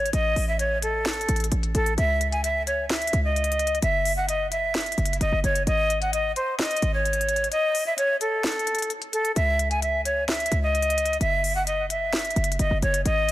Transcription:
Already playing: 808-style bass G#1
0.06 closed hi-hat
0.13 808-style bass A1, flute D#5, closed hi-hat
0.36 808-style bass A1, open hi-hat
0.48 flute E5
0.59 flute C#5, closed hi-hat
0.82 flute A4, closed hi-hat
1.06 snare, closed hi-hat
1.13 closed hi-hat
1.21 closed hi-hat
1.29 808-style bass A1, closed hi-hat
1.36 closed hi-hat
1.40 closed hi-hat
1.44 closed hi-hat
1.52 808-style bass A1, closed hi-hat
1.63 closed hi-hat
1.75 808-style bass A1, flute A4, closed hi-hat
1.86 closed hi-hat
1.98 808-style bass C#2, flute E5, closed hi-hat
2.21 closed hi-hat
2.32 flute G#5, closed hi-hat
2.44 flute E5, closed hi-hat
2.67 flute C#5, closed hi-hat
2.90 flute E5, snare, closed hi-hat
2.96 closed hi-hat
3.02 closed hi-hat
3.07 closed hi-hat
3.13 808-style bass C#2, closed hi-hat
3.25 flute D#5
3.36 closed hi-hat
3.44 closed hi-hat
3.52 closed hi-hat
3.59 closed hi-hat
3.67 closed hi-hat
3.75 closed hi-hat
3.82 808-style bass F#1, flute E5, closed hi-hat
4.05 open hi-hat
4.17 flute F#5
4.28 flute D#5, closed hi-hat
4.52 flute E5, closed hi-hat
4.75 snare, closed hi-hat
4.80 closed hi-hat
4.86 closed hi-hat
4.92 closed hi-hat
4.98 808-style bass F#1, closed hi-hat
5.06 closed hi-hat
5.13 closed hi-hat
5.21 808-style bass F#1, flute D#5, closed hi-hat
5.32 808-style bass F#1
5.44 808-style bass F#1, flute C#5, closed hi-hat
5.55 closed hi-hat
5.67 808-style bass G#1, flute D#5, closed hi-hat
5.90 closed hi-hat
6.02 flute F#5, closed hi-hat
6.13 flute D#5, closed hi-hat
6.36 flute C5, closed hi-hat
6.59 flute D#5, snare, closed hi-hat
6.65 closed hi-hat
6.71 closed hi-hat
6.77 closed hi-hat
6.82 808-style bass G#1, closed hi-hat
6.94 flute C#5
7.05 closed hi-hat
7.13 closed hi-hat
7.21 closed hi-hat
7.29 closed hi-hat
7.36 closed hi-hat
7.44 closed hi-hat
7.52 flute D#5, closed hi-hat
7.75 open hi-hat
7.86 flute E5
7.98 flute C#5, closed hi-hat
8.21 flute A4, closed hi-hat
8.44 snare, closed hi-hat
8.52 closed hi-hat
8.59 closed hi-hat
8.67 closed hi-hat
8.75 closed hi-hat
8.79 closed hi-hat
8.82 closed hi-hat
8.90 closed hi-hat
9.02 closed hi-hat
9.13 flute A4, closed hi-hat
9.25 closed hi-hat
9.36 808-style bass C#2, flute E5, closed hi-hat
9.59 closed hi-hat
9.71 flute G#5, closed hi-hat
9.82 flute E5, closed hi-hat
10.05 flute C#5, closed hi-hat
10.29 flute E5, snare, closed hi-hat
10.34 closed hi-hat
10.40 closed hi-hat
10.46 closed hi-hat
10.52 808-style bass C#2, closed hi-hat
10.63 flute D#5
10.75 closed hi-hat
10.82 closed hi-hat
10.90 closed hi-hat
10.98 closed hi-hat
11.06 closed hi-hat
11.13 closed hi-hat
11.21 808-style bass F#1, flute E5, closed hi-hat
11.44 open hi-hat
11.56 flute F#5
11.67 flute D#5, closed hi-hat
11.90 flute E5, closed hi-hat
12.13 snare, closed hi-hat
12.19 closed hi-hat
12.25 closed hi-hat
12.31 closed hi-hat
12.36 808-style bass F#1, closed hi-hat
12.44 closed hi-hat
12.52 closed hi-hat
12.59 808-style bass F#1, flute D#5, closed hi-hat
12.71 808-style bass F#1
12.82 808-style bass F#1, flute C#5, closed hi-hat
12.94 closed hi-hat
13.05 808-style bass G#1, flute D#5, closed hi-hat
13.29 closed hi-hat

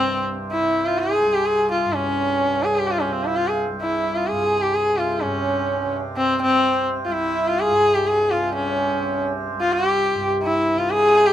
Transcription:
Already playing: tanpura C2 G2, sarangi C4, harmonium C4
0.00 tanpura C3
0.51 sarangi E4
0.60 tanpura C3, harmonium E4
0.86 sarangi F4
0.99 sarangi G#4
1.11 harmonium G#4
1.23 tanpura C2
1.34 sarangi G4
1.45 sarangi G#4
1.58 harmonium G#4
1.71 sarangi F4
1.85 tanpura G2
1.93 sarangi C#4
2.05 harmonium C#4
2.46 tanpura C3
2.64 sarangi G#4
2.75 sarangi G4
2.88 sarangi F4, harmonium G4
3.00 sarangi C#4, harmonium F4
3.08 tanpura C3, sarangi C#4
3.13 sarangi C4
3.25 sarangi E4
3.36 sarangi F4
3.47 harmonium F4, sarangi G#4
3.70 tanpura C2
3.81 sarangi E4
3.95 harmonium E4
4.16 sarangi F4
4.27 tanpura G2, harmonium F4, sarangi G#4
4.41 harmonium G#4
4.62 sarangi G4
4.74 sarangi G#4
4.89 tanpura C3, harmonium G#4
4.98 sarangi F4
5.21 tanpura G2, sarangi C#4
5.35 harmonium C#4
5.84 tanpura C3
6.17 sarangi C4
6.30 harmonium C4
6.42 sarangi C4
6.46 tanpura C3
6.54 harmonium C4
7.05 tanpura C2, sarangi F4
7.12 sarangi E4
7.23 harmonium E4
7.47 sarangi F4
7.59 harmonium F4, sarangi G#4
7.68 tanpura G2, harmonium G#4
7.95 sarangi G4
8.06 harmonium G4, sarangi G#4
8.19 harmonium G#4
8.30 tanpura C3, sarangi F4
8.55 sarangi C#4
8.66 harmonium C#4
8.92 tanpura C3
9.54 tanpura C2
9.60 sarangi F4
9.71 harmonium F4, sarangi G4
9.84 harmonium G4
10.14 tanpura G2
10.43 sarangi E4
10.54 harmonium E4
10.76 tanpura C3, sarangi F4
10.90 sarangi G#4, harmonium B4
11.02 harmonium G#4
11.26 sarangi G4

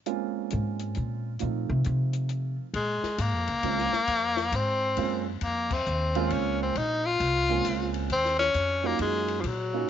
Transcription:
0.06 grand piano G#3 A#3 C4 C#4 F4, closed hi-hat
0.50 upright bass G#2, closed hi-hat
0.79 closed hi-hat
0.95 upright bass A#2, closed hi-hat
1.39 upright bass A#2, grand piano F3 A3 C4 D#4 F4, closed hi-hat
1.69 upright bass C3
1.84 upright bass C3, closed hi-hat
2.13 closed hi-hat
2.29 closed hi-hat
2.74 upright bass A#2, tenor saxophone G#3, kick, ride
3.03 muted upright bass stroke, snare
3.18 upright bass G#2, tenor saxophone A#3, kick, hi-hat pedal, ride
3.33 upright bass F2
3.47 upright bass C#2, ride
3.63 upright bass C#2, grand piano G#3 A#3 C4 C#4 F4, kick, ride
3.78 snare
3.93 muted upright bass stroke, snare
4.07 upright bass F2, kick, ride
4.37 snare
4.52 upright bass G#2, tenor saxophone C4, kick, hi-hat pedal, ride
4.97 upright bass F#2, grand piano G#3 A#3 C4 C#4 F4, kick, ride
5.41 upright bass F2, tenor saxophone A#3, kick, ride
5.71 tenor saxophone C4, kick, crash
5.86 upright bass D#2, hi-hat pedal
6.15 grand piano G#3 A#3 C4 C#4 F4, ride
6.30 upright bass C#2, tenor saxophone C#4, kick, ride
6.63 tenor saxophone C4
6.75 upright bass A#1, tenor saxophone D#4, kick, ride
7.06 tenor saxophone F4
7.20 upright bass C2, kick, ride
7.49 grand piano G#3 A#3 C4 C#4 F4
7.65 upright bass C#2, kick, hi-hat pedal, ride
7.94 ride
8.10 upright bass D#2, tenor saxophone C4, kick, ride
8.25 snare
8.39 tenor saxophone C#4, snare
8.54 upright bass F2, kick, hi-hat pedal, ride
8.83 grand piano F#3 A#3 C#4 D#4 F4, tenor saxophone A#3
8.99 upright bass F#2, tenor saxophone G#3, kick, ride
9.28 ride
9.41 upright bass A#2, tenor saxophone F3, kick, ride
9.47 tenor saxophone F#3
9.73 grand piano F#3 A#3 C#4 D#4 F4

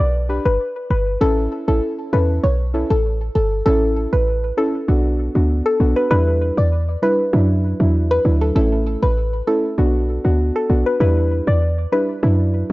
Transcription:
0.00 808-style bass B1, synth pluck D5
0.29 synth stab D4 G4 B4
0.45 808-style bass G1, synth pluck B4
0.90 808-style bass G1, synth pluck B4
1.21 808-style bass A1, synth stab C#4 E4 A4, synth pluck A4
1.68 808-style bass A1, synth stab C#4 E4 A4, synth pluck A4
2.13 808-style bass E2, synth stab C#4 E4 A4, synth pluck B4
2.43 808-style bass B1, synth pluck C#5
2.74 synth stab C#4 E4 A4
2.90 808-style bass A1, synth pluck A4
3.35 808-style bass G1, synth pluck A4
3.66 808-style bass A1, synth stab C#4 E4 A4, synth pluck A4
4.13 808-style bass A1, synth pluck B4
4.57 synth stab C#4 E4 A4, synth pluck A4
4.88 808-style bass B1, synth stab B3 D4 F#4
5.35 808-style bass D2, synth stab B3 D4 F#4
5.66 synth pluck A4
5.80 808-style bass B1, synth stab B3 D4 F#4
5.96 synth pluck B4
6.10 808-style bass E2, synth stab G3 D4 E4, synth pluck B4
6.57 808-style bass E2, synth pluck D5
7.02 synth stab G3 D4 E4, synth pluck B4
7.33 808-style bass F#2, synth stab F#3 D4 E4
7.80 808-style bass E2, synth stab F#3 D4 E4
8.11 synth pluck B4
8.25 808-style bass D2, synth stab F#3 D4 E4
8.41 synth pluck A4
8.55 808-style bass A1, synth stab A3 C#4 E4, synth pluck A4
9.03 808-style bass A1, synth pluck B4
9.47 synth stab A3 C#4 E4, synth pluck A4
9.78 808-style bass B1, synth stab B3 D4 F#4
10.24 808-style bass D2, synth stab B3 D4 F#4
10.56 synth pluck A4
10.69 808-style bass B1, synth stab B3 D4 F#4
10.86 synth pluck B4
11.00 808-style bass E2, synth stab G3 D4 E4, synth pluck B4
11.47 808-style bass E2, synth pluck D5
11.92 synth stab G3 D4 E4, synth pluck B4
12.23 808-style bass F#2, synth stab F#3 D4 E4

